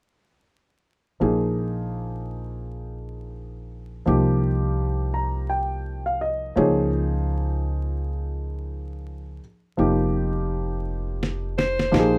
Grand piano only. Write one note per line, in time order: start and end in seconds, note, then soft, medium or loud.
1.20 4.02 F3 medium
1.20 4.03 A#3 medium
1.20 4.03 D#4 medium
1.20 4.03 G#4 medium
4.06 6.52 F3 medium
4.06 6.52 A#3 medium
4.06 6.53 D#4 medium
4.06 6.53 G4 medium
5.14 5.47 A#5 medium
5.50 6.02 G5 medium
6.06 6.20 F5 medium
6.21 6.54 D#5 medium
6.56 9.38 F3 medium
6.56 9.38 A#3 medium
6.56 9.39 D#4 medium
6.56 9.39 G#4 medium
6.56 6.90 C#5 medium
9.77 11.88 F3 medium
9.77 11.88 A#3 medium
9.77 11.89 D#4 medium
9.77 11.89 G4 medium
11.91 12.18 F3 medium
11.91 12.18 A#3 medium
11.91 12.18 D#4 medium
11.91 12.00 G4 medium
11.99 12.18 G#4 medium